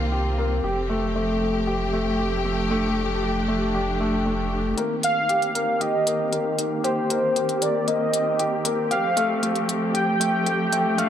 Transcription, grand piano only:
Already playing: A#3 G4
0.12 G4
0.38 A#3
0.64 G4
0.90 A3
1.15 A3
1.67 G4
1.93 A3
2.19 G4
2.45 A3
2.71 A3
3.23 G4
3.48 A3
3.75 G4
4.00 A3
4.26 A3
4.78 A#3
5.29 G4
5.55 A#3
5.80 G4
6.07 A#3
6.33 A#3
6.84 G4
7.10 A#3
7.36 G4
7.62 A#3
7.88 A#3
8.40 G4
8.65 A#3
8.91 G4
9.17 A3
9.43 A3
9.94 G4
10.20 A3
10.46 G4
10.72 A3
10.98 A3

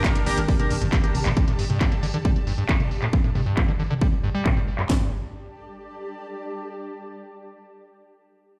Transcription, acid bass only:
0.04 G3
0.15 D3
0.26 D3
0.37 D3
0.48 G3
0.71 G2
0.82 G2
1.26 A2
1.37 G2
1.48 A2
1.59 G2
1.70 G2
1.81 G3
1.92 D3
2.03 D3
2.14 D3
2.25 G3
2.47 G2
2.58 G2
3.02 A2
3.13 G2
3.24 A2
3.35 G2
3.46 G2
3.57 G3
3.68 D3
3.79 D3
3.90 D3
4.01 G3
4.24 G2
4.35 G3
4.46 F#2
4.57 G2
4.79 F#2
4.90 G2

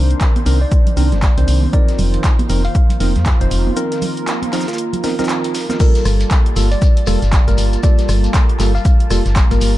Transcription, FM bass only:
Already playing: C2
0.46 C2
0.97 C2
1.12 G1
1.38 C2
1.48 C2
1.99 F1
2.49 F1
3.00 F1
3.16 F2
3.41 F1
3.51 F1
6.05 G1
6.56 G1
7.07 F1
7.22 G1
7.48 G1
7.58 G1
8.09 G1
8.60 G1
9.10 F1
9.26 G1
9.51 G1
9.61 G1

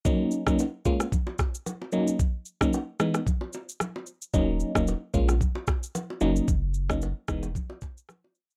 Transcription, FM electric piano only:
0.05 F#3 A#3 C#4 D#4
0.46 F#3 A#3 C#4 D#4
0.85 G#3 A#3 C#4 F4
1.92 F#3 A#3 C#4 D#4
2.61 F#3 A#3 C#4 D#4
3.00 E3 G#3 B3 D#4
4.34 F#3 A#3 C#4 D#4
4.75 F#3 A#3 C#4 D#4
5.14 G#3 A#3 C#4 F4
6.21 F#3 A#3 C#4 D#4
6.89 F#3 A#3 C#4 D#4
7.28 E3 G#3 B3 D#4

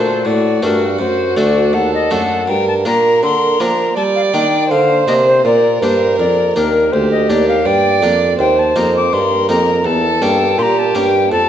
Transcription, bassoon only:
Already playing: A#2
0.26 A2
0.63 G2
1.00 F#2
1.37 D2
1.74 D#2
2.12 F#2
2.50 G2
2.86 A#2
3.24 D3
3.61 F3
3.97 G3
4.34 D#3
4.70 D3
5.07 C3
5.44 A#2
5.82 G2
6.19 F2
6.56 D#2
6.93 D2
7.29 D#2
7.66 G2
8.02 F2
8.39 D#2
8.76 F2
9.13 G2
9.49 F2
9.85 E2
10.21 G2
10.58 A#2
10.95 G2
11.32 F2

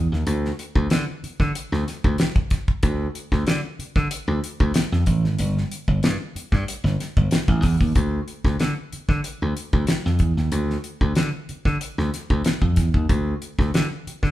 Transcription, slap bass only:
0.12 D#2
0.27 D2
0.75 D2
0.91 D3
1.24 muted slap bass stroke
1.40 D3
1.72 D2
2.04 D2
2.83 D2
3.32 D2
3.47 D3
3.79 muted slap bass stroke
3.96 D3
4.28 D2
4.60 D2
4.92 F2
5.07 A1
5.24 G#1
5.39 G1
5.88 G1
6.04 G2
6.35 muted slap bass stroke
6.52 G2
6.84 G1
7.17 G1
7.48 A1
7.64 E2
7.81 D#2
7.96 D2
8.44 D2
8.60 D3
8.93 muted slap bass stroke
9.09 D3
9.42 D2
9.73 D2
10.06 F2
10.20 E2
10.37 D#2
10.52 D2
11.01 D2
11.16 D3
11.49 muted slap bass stroke
11.65 D3
11.98 D2
12.30 D2
12.62 F2
12.77 E2
12.94 D#2
13.09 D2
13.59 D2
13.74 D3
14.07 muted slap bass stroke
14.23 D3

